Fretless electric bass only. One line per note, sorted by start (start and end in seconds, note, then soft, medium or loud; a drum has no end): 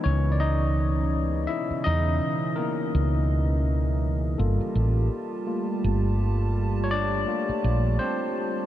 0.06 1.45 C#2 medium
1.71 muted fretless electric bass stroke soft
1.87 2.19 E2 medium
2.95 4.34 C#2 loud
4.39 4.57 G1 loud
4.61 muted fretless electric bass stroke soft
4.75 5.08 A1 medium
5.84 7.24 G1 medium
7.49 muted fretless electric bass stroke soft
7.64 7.97 A#1 medium